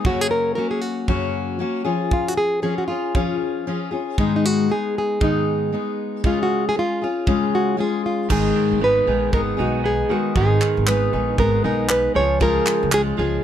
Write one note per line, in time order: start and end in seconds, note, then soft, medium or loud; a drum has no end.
0.05 0.57 F#2 medium
0.05 0.57 C#3 medium
0.05 0.55 F#3 medium
0.05 0.56 A#3 medium
0.05 0.58 C#4 medium
0.05 0.21 F#4 medium
0.05 0.57 F#4 medium
0.05 kick loud
0.21 0.30 G#4 medium
0.31 0.54 A#4 medium
0.55 1.07 F#3 soft
0.55 1.07 A#3 medium
0.55 1.08 C#4 medium
0.55 1.08 F#4 medium
0.55 0.70 A#4 medium
0.71 0.81 G#4 medium
0.81 1.34 F#4 medium
1.08 1.60 F#2 medium
1.08 1.60 C#3 medium
1.08 1.58 F#3 medium
1.08 1.59 A#3 medium
1.08 1.60 C#4 medium
1.08 1.60 F#4 medium
1.08 kick medium
1.59 1.85 F#3 medium
1.59 1.85 A#3 medium
1.59 1.84 C#4 medium
1.59 1.84 F#4 medium
1.84 2.61 F3 soft
1.84 2.62 C#4 medium
1.84 2.63 F4 medium
1.84 2.64 G#4 medium
2.11 2.28 F4 medium
2.11 kick medium
2.28 2.37 F#4 medium
2.37 2.62 G#4 medium
2.62 2.88 F3 soft
2.62 2.89 C#4 medium
2.62 2.88 F4 medium
2.62 2.78 G#4 loud
2.62 2.87 G#4 medium
2.78 2.87 F#4 medium
2.88 3.14 C#4 soft
2.88 3.36 F4 medium
2.88 3.14 F4 soft
2.88 3.14 G#4 soft
3.15 3.66 F3 medium
3.15 3.66 C#4 medium
3.15 3.67 F4 medium
3.15 3.69 G#4 medium
3.15 kick medium
3.67 3.92 F3 medium
3.67 3.92 C#4 medium
3.67 3.91 F4 medium
3.67 3.90 G#4 medium
3.91 4.18 C#4 soft
3.91 4.18 F4 soft
3.91 4.17 G#4 soft
4.18 4.70 G#2 medium
4.18 4.70 D#3 medium
4.18 4.69 G#3 medium
4.18 4.69 B3 medium
4.18 4.70 D#4 medium
4.18 4.35 D#4 medium
4.18 4.71 G#4 medium
4.18 kick medium
4.36 4.45 D#4 medium
4.45 4.71 F#4 medium
4.69 5.20 G#3 medium
4.69 5.20 B3 medium
4.69 5.20 D#4 medium
4.69 5.21 G#4 medium
4.69 4.97 G#4 medium
4.98 5.23 G#4 medium
5.20 5.72 G#2 medium
5.20 5.72 D#3 medium
5.20 5.72 G#3 medium
5.20 5.72 B3 medium
5.20 5.73 D#4 medium
5.20 5.96 D#4 medium
5.20 5.74 G#4 medium
5.20 kick loud
5.72 6.24 G#3 medium
5.72 6.24 B3 medium
5.72 6.24 D#4 medium
5.72 6.25 G#4 medium
6.23 6.75 C#3 medium
6.23 6.75 G#3 medium
6.23 6.75 C#4 medium
6.23 6.75 F4 medium
6.23 6.41 F4 medium
6.23 6.77 G#4 medium
6.23 kick medium
6.43 6.68 F#4 medium
6.69 6.77 G#4 medium
6.76 7.01 G#3 soft
6.76 7.02 C#4 soft
6.76 7.02 F4 soft
6.76 7.03 F4 medium
6.76 7.00 G#4 medium
7.02 7.26 C#4 soft
7.02 7.27 F4 soft
7.02 8.02 F4 medium
7.02 7.27 G#4 soft
7.26 7.78 C#3 medium
7.26 7.77 G#3 medium
7.26 7.77 C#4 medium
7.26 7.77 F4 medium
7.26 7.79 G#4 medium
7.26 kick medium
7.55 7.80 F#4 medium
7.77 8.29 G#3 medium
7.77 8.30 C#4 medium
7.77 8.30 F4 medium
7.77 8.30 G#4 medium
7.77 8.06 G#4 medium
8.06 8.31 F4 medium
8.29 8.51 G#1 medium
8.29 8.81 G#2 medium
8.29 8.81 D#3 medium
8.29 8.55 D#3 medium
8.29 8.80 G#3 medium
8.29 8.80 B3 medium
8.29 8.80 D#4 medium
8.29 8.82 G#4 medium
8.29 8.84 G#4 medium
8.29 kick medium
8.29 crash medium
8.56 9.06 D#3 medium
8.71 9.01 G#1 medium
8.80 9.07 G#3 soft
8.80 9.07 B3 soft
8.80 9.32 B3 medium
8.80 9.06 D#4 medium
8.80 9.06 G#4 medium
8.80 9.33 B4 medium
9.07 9.33 A#1 medium
9.07 10.09 D#3 medium
9.07 9.31 G#3 soft
9.07 9.32 B3 soft
9.07 9.33 D#4 soft
9.07 9.33 G#4 soft
9.32 9.54 G#1 loud
9.32 9.58 G#3 medium
9.32 9.57 B3 medium
9.32 9.83 B3 medium
9.32 9.57 D#4 medium
9.32 9.56 G#4 medium
9.32 9.41 A#4 medium
9.32 kick loud
9.57 10.01 B1 medium
9.57 10.11 G#3 soft
9.57 10.10 B3 soft
9.57 10.09 D#4 soft
9.57 11.63 D#4 medium
9.57 9.84 F#4 medium
9.57 10.09 G#4 soft
9.84 10.86 B3 medium
9.84 10.12 G#4 medium
10.09 10.35 D#3 medium
10.09 10.35 G#3 soft
10.09 10.35 B3 soft
10.09 10.35 D#4 soft
10.09 10.37 F#4 medium
10.09 10.35 G#4 medium
10.36 10.57 G#1 loud
10.36 10.87 G#2 medium
10.36 10.60 D#3 medium
10.36 10.87 D#3 medium
10.36 10.87 G#3 medium
10.36 10.87 B3 medium
10.36 10.88 D#4 medium
10.36 10.89 G#4 medium
10.36 10.87 G#4 medium
10.36 kick medium
10.61 11.11 D#3 medium
10.61 clap medium
10.77 11.07 G#1 medium
10.87 11.13 G#3 soft
10.87 11.37 B3 medium
10.87 11.14 B3 medium
10.87 11.13 D#4 medium
10.87 11.12 G#4 medium
10.87 11.39 B4 medium
10.87 clap loud
11.13 11.34 A#1 medium
11.13 12.15 D#3 soft
11.13 11.37 G#3 soft
11.13 11.38 B3 soft
11.13 11.39 D#4 soft
11.13 11.39 G#4 soft
11.38 11.60 G#1 medium
11.38 11.64 G#3 medium
11.38 11.88 B3 medium
11.38 11.64 B3 medium
11.38 11.63 D#4 medium
11.38 11.63 G#4 medium
11.38 11.64 A#4 medium
11.38 kick loud
11.64 12.06 B1 medium
11.64 12.40 G#3 soft
11.64 12.16 B3 soft
11.64 12.22 D#4 medium
11.64 12.16 D#4 soft
11.64 12.15 G#4 medium
11.64 11.90 A#4 medium
11.89 12.22 B3 medium
11.89 12.16 B4 medium
11.89 clap loud
12.15 12.58 C#2 medium
12.15 12.40 F3 medium
12.15 12.39 C#4 soft
12.15 12.40 F4 soft
12.15 12.40 G#4 medium
12.15 12.42 C#5 loud
12.40 12.92 C#3 medium
12.40 12.65 F3 medium
12.40 12.90 G#3 medium
12.40 12.92 C#4 medium
12.40 12.91 F4 medium
12.40 12.92 G#4 medium
12.40 12.94 A#4 medium
12.40 kick medium
12.66 13.17 F3 medium
12.66 clap medium
12.83 13.12 C#2 medium
12.91 13.18 G#3 medium
12.91 13.42 G#3 medium
12.91 13.18 C#4 medium
12.91 13.17 F4 medium
12.91 13.16 G#4 medium
12.91 13.01 G#4 loud
12.91 clap loud
13.17 13.40 C#2 medium
13.17 13.44 F3 medium
13.17 13.42 C#4 soft
13.17 13.43 F4 medium
13.17 13.44 G#4 medium